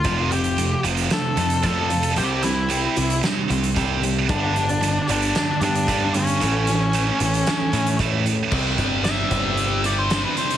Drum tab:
CC |----------------|----------------|----------------|----------------|
HH |x-xxx-xxx-xxx-xx|x-x-x-xxx-xxx-x-|x-xxx-xxx-xxx-xx|x-x-x-xxx-xxx-x-|
SD |--------o-------|--o-----o-------|--------o-------|--o-----o-------|
BD |o-----------o---|------------o---|o-----------o---|------------o---|

CC |x---------------|
HH |--x-x-x-x-x-x-xx|
SD |----o-------o---|
BD |o-o---o---------|